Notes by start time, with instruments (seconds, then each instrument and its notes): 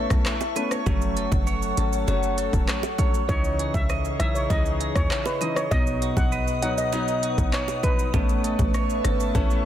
Already playing: clean electric guitar A3 E4 A4 C#5, ambient pad B4 E5 A5 C#6
0.10 808-style bass B1, grand piano A3 B3 C#4, kick, cross-stick, shaker
0.26 clean electric guitar E4, cross-stick, clap, shaker
0.41 high bongo, shaker
0.56 grand piano A3 B3 C#4, clean electric guitar B4, closed hi-hat, low bongo, shaker
0.71 clean electric guitar C#5, cross-stick, shaker
0.86 808-style bass F#1, grand piano F#3 A3 C#4, clean electric guitar F#3, ambient pad A4 C#5 F#5, kick, high bongo, shaker
1.02 shaker
1.17 clean electric guitar A4, closed hi-hat, shaker
1.32 808-style bass F#1, kick, high bongo, shaker
1.47 clean electric guitar C#5, shaker
1.62 shaker
1.77 808-style bass G#1, grand piano F#3 A3 C#4, clean electric guitar A4, closed hi-hat, low bongo, shaker
1.93 shaker
2.07 808-style bass F#1, grand piano F#3 A3 C#4, clean electric guitar F#4, high bongo, shaker
2.23 shaker
2.38 clean electric guitar A4, closed hi-hat, shaker
2.53 808-style bass E1, grand piano F#3 A3 C#4, kick, shaker
2.68 clean electric guitar F#4, cross-stick, clap, shaker
2.83 high bongo, shaker
2.98 grand piano F#3 A3 C#4, clean electric guitar C#5, kick, closed hi-hat, low bongo, shaker
3.14 shaker
3.29 808-style bass C#2, clean electric guitar C#3, grand piano E3 C#4 D#4, ambient pad G#4 C#5 D#5 C#6, steel pan C#5, kick, high bongo, shaker
3.44 shaker
3.59 clean electric guitar G#4, closed hi-hat, shaker
3.74 808-style bass C#2, steel pan E5, kick, high bongo, shaker
3.89 clean electric guitar D#5, cross-stick, shaker
4.05 shaker
4.20 808-style bass B1, grand piano E3 C#4 D#4, clean electric guitar G#4, steel pan E5, cross-stick, closed hi-hat, low bongo, shaker
4.35 steel pan C#5, shaker
4.50 808-style bass C#2, grand piano E3 C#4 D#4, clean electric guitar E4, steel pan D#5, kick, high bongo, shaker
4.66 shaker
4.81 clean electric guitar G#4, closed hi-hat, shaker
4.95 808-style bass D#2, grand piano E3 C#4 D#4, steel pan C#5, kick, cross-stick, shaker
5.11 clean electric guitar E4, cross-stick, clap, shaker
5.26 steel pan B4, high bongo, shaker
5.41 grand piano E3 C#4 D#4, clean electric guitar D#5, closed hi-hat, low bongo, shaker
5.56 steel pan C#5, cross-stick, shaker
5.71 808-style bass B1, clean electric guitar B2, grand piano F#3 B3 D#4, ambient pad B4 F#5 D#6, steel pan D#5, kick, high bongo, shaker
5.87 shaker
6.02 clean electric guitar F#4, closed hi-hat, shaker
6.17 808-style bass B1, steel pan F#5, kick, high bongo, shaker
6.32 clean electric guitar B4, shaker
6.48 shaker
6.62 808-style bass C#2, grand piano F#3 B3 D#4, clean electric guitar F#4, steel pan F#5, closed hi-hat, low bongo, shaker
6.78 steel pan D#5, shaker
6.92 808-style bass B1, grand piano F#3 B3 D#4, clean electric guitar D#4, high bongo, shaker
7.08 shaker
7.23 clean electric guitar F#4, closed hi-hat, shaker
7.38 808-style bass A1, grand piano F#3 B3 D#4, kick, shaker
7.53 clean electric guitar D#4, steel pan C#5, cross-stick, clap, shaker
7.68 high bongo, shaker
7.83 grand piano F#3 B3 D#4, clean electric guitar B4, steel pan B4, kick, closed hi-hat, low bongo, shaker
7.99 shaker
8.14 808-style bass A1, grand piano A3 B3 C#4, clean electric guitar A3, ambient pad E5 A5 C#6, kick, high bongo, shaker
8.29 shaker
8.44 clean electric guitar A4, closed hi-hat, shaker
8.59 808-style bass A1, kick, high bongo, shaker
8.74 clean electric guitar C#5, cross-stick, shaker
8.90 shaker
9.04 808-style bass G#1, grand piano A3 B3 C#4, clean electric guitar A4, cross-stick, closed hi-hat, low bongo, shaker
9.20 shaker
9.35 808-style bass A1, grand piano A3 B3 C#4, clean electric guitar E4, kick, high bongo, shaker
9.50 shaker